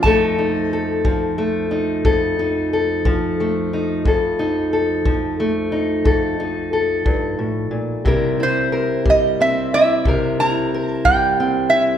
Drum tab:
BD |o--o--o--o--|o--o--o--o--|o--o--o--o--|